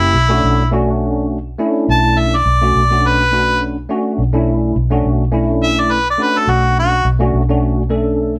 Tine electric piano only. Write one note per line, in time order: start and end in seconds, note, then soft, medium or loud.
0.00 0.14 A#3 medium
0.00 0.14 C#4 medium
0.00 0.15 E4 medium
0.00 0.15 G4 medium
0.29 0.62 A3 medium
0.29 0.62 C#4 medium
0.29 0.62 D4 medium
0.29 0.62 F#4 loud
0.71 1.37 A3 loud
0.71 1.37 C#4 medium
0.71 1.37 D4 medium
0.71 1.38 F#4 loud
1.58 2.34 A3 medium
1.58 2.35 C#4 medium
1.58 2.35 D4 medium
1.58 2.35 E4 loud
2.61 2.82 A3 medium
2.61 2.82 C#4 medium
2.61 2.82 D4 medium
2.61 2.83 F#4 medium
2.90 3.22 A3 medium
2.90 3.22 C#4 medium
2.90 3.23 D4 medium
2.90 3.23 F#4 medium
3.32 3.76 A3 medium
3.32 3.76 C#4 medium
3.32 3.76 D4 medium
3.32 3.76 F#4 medium
3.89 4.21 A3 medium
3.89 4.22 C#4 medium
3.89 4.22 D4 medium
3.89 4.22 F#4 loud
4.33 4.75 A3 medium
4.33 4.75 C#4 medium
4.33 4.75 D4 medium
4.33 4.75 E4 medium
4.90 5.22 A3 medium
4.90 5.23 C#4 medium
4.90 5.23 D4 medium
4.90 5.23 F#4 medium
5.31 5.97 A3 medium
5.31 5.97 C#4 medium
5.31 5.97 D4 medium
5.31 5.98 E4 medium
6.18 6.94 A3 medium
6.18 6.94 C#4 medium
6.18 6.95 D4 medium
6.18 6.95 F#4 medium
7.19 7.41 A3 loud
7.19 7.41 C#4 medium
7.19 7.41 D4 medium
7.19 7.42 F#4 loud
7.49 7.81 A3 medium
7.49 7.81 C#4 medium
7.49 7.81 D4 medium
7.49 7.82 F#4 medium
7.89 8.34 A3 medium
7.89 8.35 C#4 medium
7.89 8.35 D4 medium
7.89 8.35 A4 medium